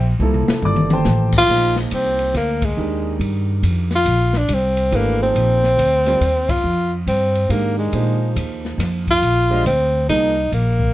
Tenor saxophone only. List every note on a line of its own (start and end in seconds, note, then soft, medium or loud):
1.38 1.76 F4 loud
1.94 2.33 C4 medium
2.37 2.66 A#3 medium
2.65 3.22 G#3 medium
3.96 4.39 F4 loud
4.37 4.55 D4 medium
4.54 4.98 C4 medium
4.96 5.22 A#3 medium
5.23 6.52 C4 loud
6.50 6.93 F4 medium
7.08 7.52 C4 medium
7.51 7.78 A#3 medium
7.78 8.33 G#3 medium
9.11 9.63 F4 loud
9.67 10.06 C4 medium
10.09 10.49 D#4 loud
10.54 10.94 A#3 medium